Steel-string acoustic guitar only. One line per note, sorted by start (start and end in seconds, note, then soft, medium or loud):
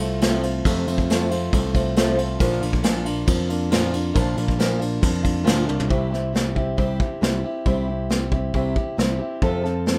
0.00 0.21 F3 soft
0.00 0.21 A3 medium
0.00 0.21 C4 medium
0.00 0.21 F4 medium
0.21 0.43 F2 medium
0.21 0.43 C3 medium
0.21 0.43 F3 medium
0.21 0.43 A3 medium
0.21 0.43 C4 medium
0.21 0.42 F4 medium
0.43 0.65 F3 medium
0.43 0.65 A3 medium
0.43 0.65 C4 medium
0.43 0.65 F4 medium
0.65 0.87 F2 medium
0.65 0.87 C3 medium
0.65 0.87 F3 medium
0.65 0.87 A3 medium
0.65 0.87 C4 loud
0.65 0.86 F4 loud
0.87 1.09 F3 soft
0.87 1.09 A3 medium
0.87 1.09 C4 medium
0.87 1.09 F4 medium
1.09 1.31 F2 medium
1.09 1.31 C3 medium
1.09 1.31 F3 medium
1.09 1.31 A3 medium
1.09 1.31 C4 medium
1.09 1.30 F4 loud
1.31 1.51 F3 soft
1.31 1.52 A3 medium
1.31 1.52 C4 medium
1.31 1.53 F4 medium
1.53 1.74 F3 medium
1.53 1.74 A3 medium
1.53 1.73 C4 medium
1.53 1.73 F4 medium
1.74 1.95 F3 medium
1.74 1.96 A3 medium
1.74 1.96 C4 medium
1.74 1.96 F4 medium
1.96 2.18 F2 medium
1.96 2.18 C3 medium
1.96 2.17 F3 medium
1.96 2.17 A3 loud
1.96 2.17 C4 medium
1.96 2.16 F4 medium
2.17 2.38 F3 soft
2.17 2.40 A3 medium
2.17 2.40 C4 medium
2.17 2.39 F4 medium
2.39 2.61 A#2 medium
2.39 2.62 F3 loud
2.39 2.62 A#3 loud
2.39 2.60 D4 loud
2.39 2.60 F4 loud
2.61 2.82 A#3 medium
2.61 2.82 D4 soft
2.61 2.83 F4 medium
2.83 3.05 A#2 medium
2.83 3.05 F3 medium
2.83 3.05 A#3 medium
2.83 3.05 D4 medium
2.83 3.04 F4 loud
3.05 3.26 A#3 medium
3.05 3.26 D4 medium
3.05 3.27 F4 medium
3.26 3.49 F3 medium
3.26 3.49 A#3 medium
3.26 3.49 D4 medium
3.26 3.48 F4 medium
3.49 3.70 A#3 medium
3.49 3.71 D4 medium
3.49 3.71 F4 medium
3.70 3.93 A#2 medium
3.70 3.93 F3 medium
3.70 3.92 A#3 loud
3.70 3.92 D4 loud
3.70 3.91 F4 medium
3.92 4.13 A#3 medium
3.92 4.14 D4 medium
3.92 4.14 F4 medium
4.14 4.36 A#2 medium
4.14 4.37 F3 medium
4.14 4.37 A#3 medium
4.14 4.36 D4 medium
4.14 4.35 F4 loud
4.37 4.58 A#3 medium
4.37 4.58 D4 medium
4.37 4.58 F4 medium
4.58 4.80 A#2 medium
4.58 4.81 F3 medium
4.58 4.79 A#3 medium
4.58 4.79 D4 medium
4.58 4.78 F4 medium
4.79 5.00 A#3 soft
4.79 5.01 D4 medium
4.79 5.01 F4 medium
5.01 5.24 F3 medium
5.01 5.23 A#3 medium
5.01 5.23 D4 medium
5.01 5.22 F4 medium
5.23 5.43 A#3 medium
5.23 5.44 D4 medium
5.23 5.44 F4 medium
5.44 5.67 A#2 medium
5.44 5.67 F3 loud
5.44 5.67 A#3 medium
5.44 5.66 D4 medium
5.44 5.65 F4 loud
5.66 5.89 A#3 soft
5.66 5.89 D4 medium
5.66 5.89 F4 medium
5.89 6.11 C3 medium
5.89 6.12 G3 medium
5.89 6.11 C4 medium
5.89 6.10 E4 medium
5.89 6.09 G4 medium
6.11 6.33 C4 soft
6.11 6.33 E4 soft
6.11 6.33 G4 soft
6.33 6.55 G3 medium
6.33 6.56 C4 medium
6.33 6.54 E4 medium
6.33 6.54 G4 medium
6.55 6.76 C4 soft
6.55 6.77 E4 medium
6.55 6.77 G4 medium
6.77 7.00 C3 medium
6.77 7.00 G3 medium
6.77 7.00 C4 medium
6.77 7.00 E4 medium
6.77 6.98 G4 medium
7.00 7.20 C4 soft
7.00 7.21 E4 medium
7.00 7.22 G4 medium
7.21 7.44 G3 medium
7.21 7.44 C4 medium
7.21 7.44 E4 medium
7.21 7.43 G4 medium
7.44 7.65 C4 soft
7.44 7.66 E4 medium
7.44 7.66 G4 medium
7.66 7.88 C3 medium
7.66 7.88 G3 medium
7.66 7.88 C4 medium
7.66 7.88 E4 medium
7.66 7.87 G4 medium
7.88 8.09 C4 soft
7.88 8.11 E4 medium
7.88 8.10 G4 medium
8.10 8.32 G3 medium
8.10 8.32 C4 medium
8.10 8.31 E4 medium
8.10 8.30 G4 medium
8.32 8.54 C4 soft
8.32 8.54 E4 medium
8.32 8.54 G4 medium
8.54 8.76 C3 medium
8.54 8.76 G3 medium
8.54 8.76 C4 medium
8.54 8.75 E4 medium
8.54 8.74 G4 medium
8.76 8.97 C4 soft
8.76 8.97 E4 medium
8.76 8.98 G4 medium
8.97 9.19 G3 medium
8.97 9.20 C4 medium
8.97 9.19 E4 medium
8.97 9.18 G4 medium
9.19 9.41 C4 soft
9.19 9.42 E4 medium
9.19 9.41 G4 medium
9.42 9.64 F2 medium
9.42 9.64 C3 medium
9.42 9.64 F3 medium
9.42 9.63 C4 medium
9.42 9.63 F4 medium
9.42 9.62 A4 medium
9.63 9.85 F3 soft
9.63 9.86 C4 medium
9.63 9.86 F4 medium
9.63 9.86 A4 medium
9.86 9.98 F3 medium
9.86 9.98 C4 medium
9.86 9.98 F4 medium
9.86 9.98 A4 medium